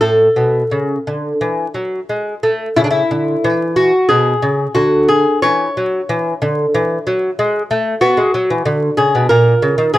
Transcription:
0.01 0.27 A2 medium
0.01 2.04 A4 medium
0.36 0.62 B2 medium
0.71 0.97 C#3 medium
1.07 1.32 D3 medium
1.41 1.65 E3 medium
1.74 1.99 F#3 medium
2.09 2.34 G#3 medium
2.43 2.67 A3 medium
2.76 3.01 C#3 medium
2.76 2.84 E4 loud
2.84 2.90 D4 medium
2.91 3.73 E4 medium
3.11 3.35 D3 medium
3.44 3.91 E3 medium
3.76 4.08 F#4 medium
4.09 4.33 B2 medium
4.09 4.72 G#4 loud
4.42 4.66 C#3 medium
4.75 5.24 D3 medium
4.75 5.07 F#4 medium
5.08 5.42 G#4 loud
5.42 5.67 E3 medium
5.42 7.82 C#5 loud
5.77 6.00 F#3 medium
6.09 6.33 E3 medium
6.42 6.65 D3 medium
6.74 6.97 E3 medium
7.07 7.29 F#3 medium
7.39 7.62 G#3 medium
7.71 7.94 A3 medium
8.01 8.17 B3 medium
8.01 8.94 F#4 loud
8.17 8.33 G#3 medium
8.34 8.49 F#3 medium
8.50 8.65 E3 medium
8.65 8.89 D3 medium
8.97 9.13 C#3 medium
8.97 9.28 G#4 medium
9.15 9.30 B2 medium
9.29 9.53 A#2 medium
9.29 9.91 A#4 loud
9.62 9.77 C#3 medium
9.78 9.93 D#3 medium
9.94 9.98 E3 medium
9.94 9.98 G#4 loud

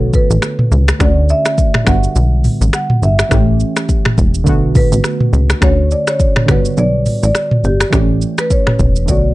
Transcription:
0.00 0.18 B1 loud
0.00 0.97 D3 medium
0.00 0.98 A3 medium
0.00 0.98 B3 medium
0.00 0.99 F#4 medium
0.00 0.16 A4 loud
0.13 1.04 B4 loud
0.13 kick loud
0.13 shaker soft
0.30 0.39 A1 medium
0.30 shaker medium
0.42 finger snap medium
0.42 cross-stick medium
0.42 shaker medium
0.59 mid tom loud
0.71 0.92 C#2 loud
0.71 shaker soft
0.88 finger snap medium
0.88 cross-stick loud
0.88 shaker medium
0.99 1.33 D2 loud
0.99 1.83 D3 medium
0.99 1.87 A3 medium
0.99 1.87 C#4 medium
0.99 1.88 F#4 medium
0.99 1.31 D5 loud
0.99 finger snap medium
0.99 kick loud
0.99 cross-stick loud
0.99 shaker medium
1.29 1.89 E5 loud
1.29 shaker medium
1.45 finger snap medium
1.45 cross-stick medium
1.45 shaker medium
1.58 kick medium
1.58 shaker medium
1.74 finger snap medium
1.74 cross-stick medium
1.74 mid tom medium
1.84 2.08 G1 loud
1.84 3.27 D3 medium
1.84 3.28 G3 medium
1.84 3.29 B3 medium
1.84 2.73 F#5 loud
1.84 finger snap medium
1.84 kick loud
1.84 cross-stick loud
1.84 shaker soft
1.90 3.30 F#4 medium
2.04 shaker medium
2.16 2.49 B1 loud
2.16 shaker medium
2.44 mid tom medium
2.44 open hi-hat soft
2.44 shaker soft
2.61 2.70 A1 loud
2.61 shaker medium
2.73 2.87 F#5 loud
2.73 finger snap medium
2.73 cross-stick medium
2.73 shaker medium
2.90 mid tom loud
3.02 3.23 G1 loud
3.02 3.57 E5 medium
3.02 shaker soft
3.19 finger snap medium
3.19 cross-stick loud
3.19 shaker medium
3.29 3.64 A1 loud
3.29 4.43 E3 medium
3.29 4.44 A3 medium
3.29 4.45 C#4 medium
3.29 finger snap medium
3.29 kick loud
3.29 cross-stick loud
3.29 shaker medium
3.34 4.46 G4 medium
3.60 shaker medium
3.76 finger snap medium
3.76 cross-stick medium
3.76 shaker medium
3.89 kick medium
3.89 shaker medium
4.05 finger snap medium
4.05 cross-stick medium
4.05 mid tom medium
4.18 4.48 E1 medium
4.18 kick loud
4.18 shaker soft
4.34 shaker medium
4.44 4.79 B1 loud
4.44 5.58 D3 medium
4.44 5.59 A3 medium
4.44 5.60 B3 medium
4.44 kick medium
4.44 shaker medium
4.49 5.61 F#4 medium
4.75 5.65 B4 loud
4.75 kick loud
4.75 mid tom medium
4.75 open hi-hat soft
4.75 shaker soft
4.92 5.01 A1 medium
4.92 shaker medium
5.04 finger snap medium
5.04 cross-stick medium
5.04 shaker medium
5.20 mid tom loud
5.33 5.54 C#2 loud
5.33 shaker soft
5.50 finger snap medium
5.50 cross-stick loud
5.50 shaker medium
5.61 5.95 D2 loud
5.61 6.45 D3 medium
5.61 6.48 A3 medium
5.61 6.49 C#4 medium
5.61 6.49 F#4 medium
5.61 5.92 C#5 loud
5.61 finger snap medium
5.61 kick loud
5.61 cross-stick loud
5.61 shaker medium
5.91 6.09 D5 loud
5.91 shaker medium
6.07 6.50 C#5 loud
6.07 finger snap medium
6.07 cross-stick medium
6.07 shaker medium
6.20 kick loud
6.20 shaker medium
6.36 finger snap medium
6.36 cross-stick medium
6.36 mid tom medium
6.46 6.69 G1 loud
6.46 7.89 D3 medium
6.46 7.89 G3 medium
6.46 7.90 B3 medium
6.46 6.79 B4 loud
6.46 finger snap medium
6.46 kick loud
6.46 cross-stick loud
6.46 shaker soft
6.51 7.91 F#4 medium
6.65 shaker medium
6.77 7.10 B1 loud
6.77 7.23 D5 loud
6.77 shaker medium
7.06 mid tom medium
7.06 open hi-hat soft
7.06 shaker soft
7.23 7.32 A1 loud
7.23 7.66 D5 loud
7.23 shaker medium
7.35 finger snap medium
7.35 cross-stick medium
7.35 shaker medium
7.51 mid tom loud
7.64 7.85 G1 loud
7.64 8.41 G4 medium
7.64 shaker soft
7.80 finger snap medium
7.80 cross-stick loud
7.80 shaker medium
7.90 8.26 A1 loud
7.90 9.05 E3 medium
7.90 9.05 A3 medium
7.90 9.06 C#4 medium
7.90 finger snap medium
7.90 kick loud
7.90 cross-stick loud
7.90 shaker medium
7.95 9.07 G4 medium
8.22 shaker medium
8.38 8.51 B4 medium
8.38 finger snap medium
8.38 cross-stick medium
8.38 shaker medium
8.50 9.10 C#5 loud
8.50 kick medium
8.50 shaker medium
8.67 finger snap medium
8.67 cross-stick medium
8.67 mid tom medium
8.79 9.10 E1 medium
8.79 kick medium
8.79 shaker soft
8.96 shaker medium
9.06 9.34 B1 loud
9.06 9.34 D3 medium
9.06 9.34 A3 medium
9.06 9.34 B3 medium
9.06 9.34 D5 medium
9.06 kick medium
9.06 shaker medium
9.11 9.34 F#4 medium

